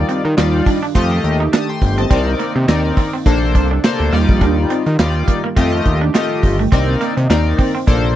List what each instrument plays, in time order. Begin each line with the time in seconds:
Already playing: analog synth pad D#3 G3 F4, analog polysynth G3 D#4 F4 D5
0.09 clean electric guitar C4, closed hi-hat
0.25 analog synth bass D#3, muted clean electric guitar stroke
0.37 analog synth bass D#2, analog polysynth G3 D#4 F4 D5, muted clean electric guitar stroke, snare, clap, closed hi-hat
0.66 clean electric guitar D4, kick, open hi-hat
0.83 clean electric guitar D4
0.95 analog synth bass F2, analog synth pad D#3 A3 G4, analog polysynth A3 F4 G4 D#5, clean electric guitar C4, kick, closed hi-hat
1.11 muted clean electric guitar stroke
1.24 analog synth bass D#2, closed hi-hat
1.40 clean electric guitar D#4
1.53 clean electric guitar D4, analog polysynth A5 D#6, snare, clap, closed hi-hat
1.69 analog polysynth G5 C6
1.82 analog synth bass G1, muted clean electric guitar stroke, kick, open hi-hat
1.98 clean electric guitar C4, analog polysynth D#5 A5, closed hi-hat
2.10 analog synth bass C2, analog synth pad D#3 A#3 D#4, analog polysynth C4 D#4 A#4 D5, clean electric guitar C4, kick, closed hi-hat
2.39 clean electric guitar A#3, closed hi-hat
2.56 analog synth bass C3, muted clean electric guitar stroke
2.68 analog synth bass D#2, analog polysynth C4 D#4 A#4 D5, muted clean electric guitar stroke, snare, clap, closed hi-hat
2.97 clean electric guitar C4, kick, open hi-hat
3.13 clean electric guitar C4
3.26 analog synth bass A#1, analog synth pad C3 D4 A4, analog polysynth A#3 D4 A4 C5, muted clean electric guitar stroke, kick, closed hi-hat
3.55 analog synth bass C2, clean electric guitar D4, kick, closed hi-hat
3.71 clean electric guitar D4
3.84 analog polysynth A#3 D4 A4 C5, snare, clap, closed hi-hat
4.00 analog synth bass D2
4.12 analog synth bass D#2, analog synth pad D#3 G3 F4, analog polysynth G3 D#4 F4 D5, clean electric guitar A#3, open hi-hat
4.29 analog synth bass A#1, kick
4.41 analog synth bass D#2, clean electric guitar D4, kick, closed hi-hat
4.70 clean electric guitar C4, closed hi-hat
4.86 analog synth bass D#3, muted clean electric guitar stroke, closed hi-hat
4.99 analog synth bass D#2, analog polysynth G3 D#4 F4 D5, muted clean electric guitar stroke, snare, clap, closed hi-hat
5.28 clean electric guitar A#3, kick, closed hi-hat
5.44 clean electric guitar A#3
5.56 analog synth bass F2, analog synth pad D#3 A3 G4, analog polysynth A3 F4 G4 D#5, clean electric guitar C4, kick, closed hi-hat
5.73 muted clean electric guitar stroke
5.85 analog synth bass D#2, kick, closed hi-hat
6.01 clean electric guitar D4
6.14 analog polysynth A3 F4 G4 D#5, clean electric guitar C4, snare, clap, closed hi-hat
6.43 analog synth bass G1, muted clean electric guitar stroke, kick, open hi-hat
6.59 clean electric guitar A3
6.72 analog synth bass C2, analog synth pad D#3 A#3 D#4, clean electric guitar C4, analog polysynth C4 D#4 A#4 D5, kick, closed hi-hat
7.01 clean electric guitar A#3, closed hi-hat
7.17 analog synth bass C3, muted clean electric guitar stroke, closed hi-hat
7.30 analog synth bass D#2, analog polysynth C4 D#4 A#4 D5, muted clean electric guitar stroke, snare, clap, closed hi-hat
7.58 clean electric guitar C4, kick, open hi-hat
7.75 clean electric guitar C4
7.87 analog synth bass A#1, analog synth pad C3 D4 A4, analog polysynth A#3 D4 A4 C5, muted clean electric guitar stroke, kick, closed hi-hat